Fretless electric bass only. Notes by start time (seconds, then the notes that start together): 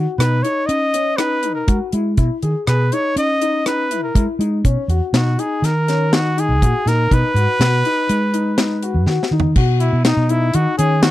0.18 B2
0.69 C#4
1.55 B2
1.68 G#3
1.93 G#3
2.17 B2
2.43 D#3
2.67 B2
3.16 C#4
4.03 B2
4.15 G#3
4.39 G#3
4.64 B2
4.88 E2
5.13 B2
5.62 D#3
6.49 C#2
6.62 A#2
6.86 A#2
7.11 B2
7.34 G#2
7.60 B2
8.09 G#3
8.94 F#2
9.06 D#3
9.31 D#3
9.56 B2
9.93 B2
10.17 B2
10.54 D#3
10.79 D#3